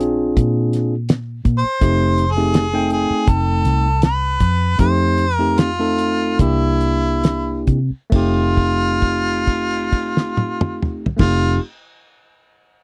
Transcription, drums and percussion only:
0.01 closed hi-hat
0.37 kick, closed hi-hat
0.73 snare, closed hi-hat
1.09 snare, closed hi-hat
1.45 kick, closed hi-hat
1.81 kick, closed hi-hat
2.18 closed hi-hat
2.38 snare
2.54 snare, closed hi-hat
2.90 closed hi-hat
3.27 kick, closed hi-hat
3.65 snare, closed hi-hat
4.02 snare, closed hi-hat
4.40 kick, closed hi-hat
4.79 kick, closed hi-hat
5.18 closed hi-hat
5.58 snare, closed hi-hat
5.98 closed hi-hat
6.39 kick, closed hi-hat
6.81 closed hi-hat
7.24 snare, closed hi-hat
7.67 kick, closed hi-hat
8.12 kick, crash
8.57 kick, crash
8.81 crash
9.02 kick, crash
9.26 crash
9.47 kick, crash
9.71 crash
9.92 kick, crash
10.17 snare
10.37 high tom
10.61 mid tom
10.83 mid tom
11.06 floor tom
11.19 kick, snare, crash

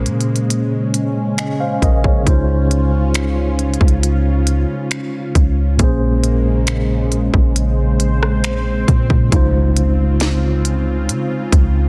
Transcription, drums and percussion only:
0.06 closed hi-hat
0.21 closed hi-hat
0.36 closed hi-hat
0.50 closed hi-hat
0.94 closed hi-hat
1.38 finger snap, closed hi-hat
1.82 kick, closed hi-hat
2.04 kick
2.27 kick, closed hi-hat
2.71 closed hi-hat
3.14 finger snap, closed hi-hat
3.59 closed hi-hat
3.74 closed hi-hat
3.81 kick
3.88 closed hi-hat
4.03 closed hi-hat
4.47 closed hi-hat
4.91 finger snap, closed hi-hat
5.35 kick, closed hi-hat
5.79 kick, closed hi-hat
6.24 closed hi-hat
6.67 finger snap, closed hi-hat
7.12 closed hi-hat
7.34 kick
7.56 closed hi-hat
8.00 closed hi-hat
8.23 cross-stick
8.44 finger snap, closed hi-hat
8.88 kick, closed hi-hat
9.10 kick
9.32 kick, closed hi-hat
9.77 closed hi-hat
10.20 snare, closed hi-hat
10.65 closed hi-hat
11.09 closed hi-hat
11.52 kick, closed hi-hat

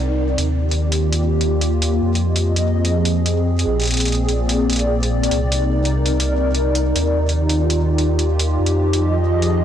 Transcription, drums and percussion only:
0.38 closed hi-hat
0.71 closed hi-hat
0.92 closed hi-hat
1.13 closed hi-hat
1.41 closed hi-hat
1.61 closed hi-hat
1.82 closed hi-hat
2.15 closed hi-hat
2.36 closed hi-hat
2.56 closed hi-hat
2.85 closed hi-hat
3.05 closed hi-hat
3.26 closed hi-hat
3.59 closed hi-hat
3.80 closed hi-hat
3.82 closed hi-hat
3.84 closed hi-hat
3.85 closed hi-hat
3.87 closed hi-hat
3.91 closed hi-hat
3.94 closed hi-hat
3.97 closed hi-hat
4.00 closed hi-hat
4.05 closed hi-hat
4.08 closed hi-hat
4.12 closed hi-hat
4.15 closed hi-hat
4.29 closed hi-hat
4.49 closed hi-hat
4.70 closed hi-hat
4.73 closed hi-hat
4.76 closed hi-hat
4.79 closed hi-hat
5.03 closed hi-hat
5.23 closed hi-hat
5.31 closed hi-hat
5.52 closed hi-hat
5.85 closed hi-hat
6.06 closed hi-hat
6.20 closed hi-hat
6.55 closed hi-hat
6.75 closed hi-hat
6.96 closed hi-hat
7.29 closed hi-hat
7.49 closed hi-hat
7.70 closed hi-hat
7.98 closed hi-hat
8.19 closed hi-hat
8.39 closed hi-hat
8.66 closed hi-hat
8.93 closed hi-hat
9.42 closed hi-hat

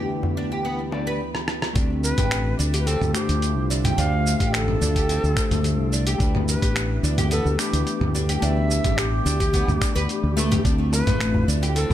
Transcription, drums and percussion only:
0.23 darbuka dum
0.52 darbuka ka
0.92 darbuka ka, darbuka tek
1.35 cross-stick
1.48 cross-stick
1.62 cross-stick
1.76 kick, closed hi-hat, shaker
2.04 shaker
2.18 kick, closed hi-hat, mid tom, shaker
2.31 finger snap, closed hi-hat, shaker
2.59 shaker
2.74 closed hi-hat, shaker
2.87 closed hi-hat, shaker
3.01 mid tom, shaker
3.15 finger snap, shaker
3.29 closed hi-hat, shaker
3.42 closed hi-hat, shaker
3.71 shaker
3.85 closed hi-hat, mid tom, shaker
3.98 closed hi-hat, shaker
4.27 shaker
4.40 kick, closed hi-hat, shaker
4.54 finger snap, closed hi-hat, shaker
4.68 mid tom
4.82 shaker
4.96 kick, closed hi-hat, shaker
5.09 closed hi-hat, shaker
5.24 shaker
5.37 finger snap, kick, shaker
5.51 closed hi-hat, mid tom, shaker
5.64 closed hi-hat, shaker
5.93 shaker
6.07 closed hi-hat, shaker
6.20 kick, closed hi-hat, shaker
6.35 mid tom
6.48 shaker
6.62 kick, closed hi-hat, shaker
6.76 finger snap, closed hi-hat, shaker
7.04 shaker
7.18 closed hi-hat, mid tom, shaker
7.31 closed hi-hat, shaker
7.46 shaker
7.59 finger snap, shaker
7.73 closed hi-hat, shaker
7.87 closed hi-hat, shaker
8.01 mid tom
8.15 shaker
8.29 closed hi-hat, shaker
8.42 closed hi-hat, shaker
8.71 shaker
8.84 kick, closed hi-hat, mid tom, shaker
8.98 finger snap, closed hi-hat, shaker
9.26 shaker
9.40 kick, closed hi-hat, shaker
9.54 kick, closed hi-hat, shaker
9.68 mid tom, shaker
9.81 finger snap, kick, shaker
9.96 closed hi-hat, shaker
10.09 closed hi-hat, shaker
10.38 shaker
10.52 closed hi-hat, mid tom, shaker
10.65 kick, closed hi-hat, shaker
10.93 darbuka tek, shaker
11.07 kick, closed hi-hat, mid tom, shaker
11.20 finger snap, closed hi-hat, shaker
11.34 darbuka dum
11.49 shaker
11.63 closed hi-hat, darbuka ka, shaker
11.76 closed hi-hat, shaker
11.90 mid tom, darbuka ka

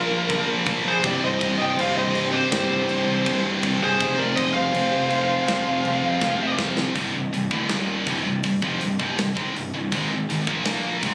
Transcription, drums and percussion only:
0.30 kick, crash
0.66 kick, crash
1.04 kick, crash
1.41 kick, crash
1.79 crash
2.15 crash
2.52 snare, crash
2.89 crash
3.26 kick, crash
3.63 kick, crash
4.01 kick, crash
4.37 kick, crash
4.74 crash
5.10 crash
5.48 snare, crash
5.85 crash
6.21 kick, snare
6.59 kick, snare
6.77 snare
6.96 kick, open hi-hat
7.34 open hi-hat
7.51 kick
7.69 snare, open hi-hat
8.07 kick, open hi-hat
8.43 kick, open hi-hat
8.62 kick
8.81 open hi-hat
9.00 kick
9.19 snare, open hi-hat
9.37 kick
9.56 open hi-hat
9.92 kick, open hi-hat
10.30 open hi-hat
10.47 kick
10.65 snare, open hi-hat
11.03 kick, open hi-hat

